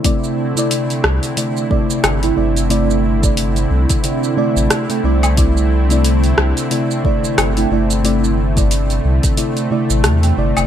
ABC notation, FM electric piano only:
X:1
M:4/4
L:1/16
Q:"Swing 16ths" 1/4=90
K:C
V:1 name="FM electric piano"
[C,A,Ed]3 [C,A,Ed]4- [C,A,Ed] [C,A,Ed]2 [C,A,Ed]3 [C,A,Eg] [C,A,Ed]2 | [C,A,Ed]3 [C,A,Ed]4- [C,A,Ed] [C,A,Ed]2 [C,A,Ed]3 [C,A,Eg] [C,A,Ed]2 | [C,A,Ed]3 [C,A,Ed]4- [C,A,Ed] [C,A,Ed]2 [C,A,Ed]3 [C,A,Eg] [C,A,Ed]2 | [C,A,Ed]3 [C,A,Ed]4- [C,A,Ed] [C,A,Ed]2 [C,A,Ed]3 [C,A,Eg] [C,A,Ed]2 |]